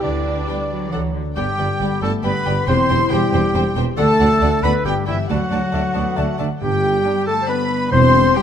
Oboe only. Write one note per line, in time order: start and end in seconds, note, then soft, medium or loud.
0.03 0.90 D5 soft
0.92 1.02 D5 soft
1.36 1.98 G4 medium
2.02 2.12 A4 medium
2.24 2.67 B4 medium
2.68 3.13 C5 medium
3.11 3.76 G4 medium
3.98 4.65 A4 medium
4.63 4.85 B4 medium
4.86 4.95 G4 medium
5.07 5.17 E4 medium
5.29 6.37 F#4 medium
6.62 7.23 G4 medium
7.26 7.48 A4 medium
7.49 7.91 B4 medium
7.92 8.35 C5 medium
8.35 8.42 G4 medium